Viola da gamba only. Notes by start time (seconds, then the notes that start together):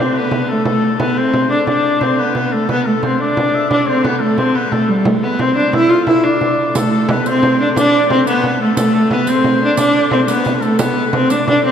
0.01 C4
0.18 B3
0.51 A3
0.69 A3
1.00 B3
1.17 C4
1.50 D4
1.69 D4
2.02 C4
2.19 B3
2.52 A3
2.70 B3
2.87 A3
3.04 C4
3.20 D4
3.71 D4
3.89 C4
4.04 B3
4.22 A3
4.38 C4
4.55 B3
4.72 A3
4.89 G3
5.06 A3
5.23 B3
5.40 C4
5.56 D4
5.75 E4
5.89 F4
6.06 E4
6.24 D4
6.78 A3
7.13 B3
7.29 C4
7.61 D4
7.77 D4
8.11 C4
8.28 B3
8.62 A3
8.78 A3
9.13 B3
9.29 C4
9.63 D4
9.78 D4
10.12 C4
10.29 B3
10.63 A3
10.79 B3
11.15 C4
11.31 D4
11.49 D4
11.65 C4